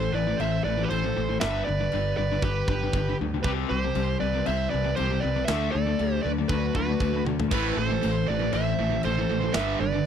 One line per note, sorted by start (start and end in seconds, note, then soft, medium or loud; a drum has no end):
0.00 0.11 A2 medium
0.00 0.11 E3 medium
0.00 1.38 E3 medium
0.00 1.38 A3 medium
0.00 1.38 C4 medium
0.00 1.39 A4 medium
0.00 0.16 C5 loud
0.00 1.38 C5 loud
0.13 0.33 A1 medium
0.13 0.26 A2 medium
0.13 0.26 E3 loud
0.13 0.37 B4 medium
0.13 0.38 D5 loud
0.27 0.39 A2 medium
0.27 0.39 E3 medium
0.38 0.59 A1 medium
0.38 0.62 A2 medium
0.38 0.63 E3 medium
0.38 0.62 C5 loud
0.38 0.64 E5 loud
0.38 china medium
0.64 0.84 A1 medium
0.64 0.77 A2 medium
0.64 0.76 E3 medium
0.64 0.82 B4 medium
0.64 0.83 D5 loud
0.77 0.89 A2 medium
0.77 0.90 E3 medium
0.82 0.89 G4 medium
0.82 0.89 B4 medium
0.90 1.10 A1 medium
0.90 1.03 A2 medium
0.90 1.03 E3 medium
0.90 1.38 A4 medium
0.90 1.37 C5 loud
0.90 china medium
1.04 1.15 A2 medium
1.04 1.15 E3 medium
1.16 1.36 A1 medium
1.16 1.28 A2 medium
1.16 1.28 E3 medium
1.29 1.41 A2 medium
1.29 1.41 E3 medium
1.39 1.61 G1 medium
1.39 1.65 G2 loud
1.39 3.41 D3 medium
1.39 1.65 D3 loud
1.39 5.43 G3 medium
1.39 1.65 G3 loud
1.39 3.41 B3 medium
1.39 5.43 G4 medium
1.39 3.41 B4 medium
1.39 1.64 B4 medium
1.39 1.64 E5 loud
1.39 snare loud
1.39 china medium
1.65 1.79 G2 medium
1.65 1.79 D3 medium
1.65 2.14 B4 medium
1.65 2.16 D5 loud
1.69 1.87 G1 loud
1.80 1.92 G2 medium
1.80 1.92 D3 medium
1.92 2.13 G1 loud
1.92 2.15 G2 medium
1.92 2.15 D3 medium
1.92 china medium
2.17 2.37 G1 medium
2.17 2.30 G2 medium
2.17 2.30 D3 medium
2.17 2.41 B4 medium
2.17 2.41 D5 loud
2.32 2.42 G2 medium
2.32 2.43 D3 medium
2.42 2.62 G1 medium
2.42 2.66 G2 medium
2.42 2.66 D3 medium
2.42 2.67 G4 medium
2.42 2.67 B4 medium
2.42 kick medium
2.42 china medium
2.68 2.88 G1 loud
2.68 2.82 G2 medium
2.68 2.81 D3 medium
2.68 3.17 G4 medium
2.68 3.16 B4 medium
2.68 kick medium
2.83 2.94 G2 medium
2.83 2.94 D3 medium
2.93 3.13 G1 medium
2.93 3.07 G2 medium
2.93 3.07 D3 medium
2.93 kick medium
2.93 china medium
3.09 3.20 G2 medium
3.09 3.20 D3 medium
3.21 3.40 D2 medium
3.21 3.33 G2 medium
3.21 3.33 D3 medium
3.34 3.46 G2 medium
3.34 3.45 D3 medium
3.43 3.64 C2 loud
3.43 3.69 C3 loud
3.43 5.46 E3 medium
3.43 5.45 C4 medium
3.43 3.51 G4 medium
3.43 3.50 B4 loud
3.43 5.45 C5 medium
3.43 kick loud
3.43 china medium
3.47 3.69 G3 loud
3.47 3.69 C4 loud
3.69 3.90 C2 loud
3.69 3.83 C3 medium
3.69 3.83 G3 medium
3.69 4.17 G4 medium
3.69 4.17 C5 loud
3.84 3.94 C3 medium
3.84 3.95 G3 medium
3.95 4.15 C2 loud
3.95 4.18 C3 medium
3.95 4.18 G3 medium
3.95 china medium
4.20 4.41 C2 medium
4.20 4.33 C3 medium
4.20 4.33 G3 medium
4.20 4.44 B4 medium
4.20 4.46 D5 loud
4.34 4.45 C3 medium
4.34 4.45 G3 medium
4.46 4.67 C2 loud
4.46 4.69 C3 medium
4.46 4.69 G3 loud
4.46 4.69 C5 loud
4.46 4.70 E5 loud
4.46 china medium
4.70 4.84 C3 medium
4.70 4.83 G3 medium
4.70 4.94 B4 medium
4.70 4.94 D5 loud
4.74 4.93 C2 medium
4.84 4.96 C3 medium
4.84 4.97 G3 medium
4.96 5.10 C3 medium
4.96 5.09 G3 medium
4.96 5.20 G4 medium
4.96 5.22 C5 loud
4.96 china medium
5.00 5.18 C2 loud
5.11 5.23 C3 medium
5.11 5.23 G3 medium
5.20 5.35 G3 medium
5.20 5.46 B4 medium
5.20 5.45 D5 loud
5.24 5.43 C2 medium
5.24 5.36 C3 medium
5.36 5.48 C3 medium
5.36 5.48 G3 medium
5.45 5.68 D2 loud
5.45 7.49 F#3 medium
5.45 9.50 A3 medium
5.45 7.49 D4 medium
5.45 5.71 A4 loud
5.45 9.51 A4 medium
5.45 7.49 D5 medium
5.45 5.71 E5 loud
5.45 snare loud
5.45 china medium
5.49 5.72 D3 medium
5.49 5.72 A3 loud
5.49 5.73 D4 loud
5.72 5.94 D2 loud
5.72 5.86 D3 medium
5.72 5.85 A3 medium
5.72 6.20 A4 medium
5.72 6.21 D5 loud
5.86 5.98 D3 medium
5.86 5.98 A3 medium
5.99 6.19 D2 medium
5.99 6.22 D3 medium
5.99 6.22 A3 loud
5.99 china medium
6.23 6.44 D2 medium
6.23 6.37 D3 medium
6.23 6.37 A3 medium
6.23 6.32 B4 medium
6.23 6.30 D5 medium
6.38 6.49 D3 medium
6.38 6.49 A3 loud
6.48 6.69 D2 medium
6.48 6.73 D3 medium
6.48 6.73 A3 loud
6.48 6.72 B4 medium
6.48 kick loud
6.48 china medium
6.53 6.75 F#4 medium
6.75 6.94 D2 medium
6.75 6.88 D3 medium
6.75 6.87 A3 medium
6.75 7.24 F#4 medium
6.75 7.23 B4 medium
6.75 kick medium
6.88 6.99 D3 medium
6.88 7.00 A3 medium
7.00 7.20 D2 medium
7.00 7.13 D3 medium
7.00 7.12 A3 medium
7.00 kick medium
7.00 china medium
7.13 7.25 D3 medium
7.13 7.25 A3 medium
7.25 7.53 D2 medium
7.25 7.39 D3 medium
7.25 7.38 A3 medium
7.25 high tom medium
7.39 7.51 D3 medium
7.39 7.51 A3 medium
7.39 floor tom loud
7.49 7.71 A1 medium
7.49 7.75 A2 medium
7.49 9.51 E3 medium
7.49 7.75 E3 loud
7.49 7.76 A3 loud
7.49 9.52 C4 medium
7.49 7.75 B4 medium
7.49 9.52 C5 medium
7.49 kick loud
7.49 crash loud
7.49 china medium
7.55 7.77 E4 medium
7.77 7.97 A1 loud
7.77 7.89 A2 medium
7.77 7.89 E3 medium
7.77 8.25 A4 medium
7.77 8.29 C5 loud
7.90 8.02 A2 medium
7.90 8.02 E3 medium
8.03 8.23 A1 medium
8.03 8.25 A2 medium
8.03 8.25 E3 medium
8.03 china medium
8.28 8.48 A1 medium
8.28 8.41 A2 medium
8.28 8.40 E3 medium
8.28 8.53 B4 medium
8.28 8.51 D5 loud
8.41 8.52 A2 medium
8.41 8.53 E3 medium
8.53 8.73 A1 medium
8.53 8.76 A2 medium
8.53 8.76 E3 loud
8.53 9.02 C5 loud
8.53 9.00 E5 loud
8.53 china medium
8.79 8.98 A1 medium
8.79 8.91 A2 medium
8.79 8.91 E3 medium
8.92 9.05 A2 medium
8.92 9.04 E3 medium
9.03 9.24 A1 medium
9.03 9.18 A2 medium
9.03 9.52 A4 medium
9.03 9.56 C5 loud
9.03 china medium
9.07 9.17 E3 medium
9.18 9.30 A2 medium
9.18 9.29 E3 medium
9.29 9.49 A1 medium
9.29 9.43 A2 medium
9.29 9.42 E3 medium
9.44 9.55 A2 medium
9.44 9.55 E3 medium
9.52 9.74 G1 loud
9.52 9.77 G2 medium
9.52 10.06 D3 medium
9.52 9.78 G3 loud
9.52 10.06 G3 medium
9.52 10.06 B3 medium
9.52 10.06 G4 medium
9.52 9.78 B4 loud
9.52 10.06 B4 loud
9.52 9.80 E5 loud
9.52 snare loud
9.52 china medium
9.57 9.79 G2 loud
9.57 9.80 D3 loud
9.57 9.80 G3 loud
9.80 10.00 G1 loud
9.80 9.94 G2 medium
9.80 9.93 D3 medium
9.80 10.06 B4 medium
9.80 10.06 D5 loud
9.95 10.06 G2 medium
9.95 10.06 D3 medium